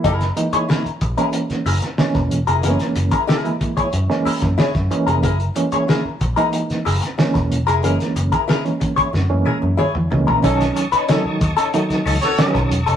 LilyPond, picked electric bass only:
\new Staff \with { instrumentName = "Picked electric bass" } { \clef bass \time 4/4 \key fis \mixolydian \tempo 4 = 92 fis,,8 r4 ais,,16 r8. fis,,16 r8 e,,16 e,,16 eis,,16 | fis,,16 r16 fis,,16 r4 r16 fis,16 r8 fis,16 r16 fis,16 r16 eis,,16 | fis,,8 r4 ais,,16 r8. fis,,16 r8 e,,16 e,,16 eis,,16 | fis,,16 r16 fis,,16 r4 r16 fis,16 fis,16 r16 fis,16 r16 e,16 cis,16 ais,,16 |
b,,8 r4 dis,16 r8. cis,16 r8 b,,16 e,,16 eis,,16 | }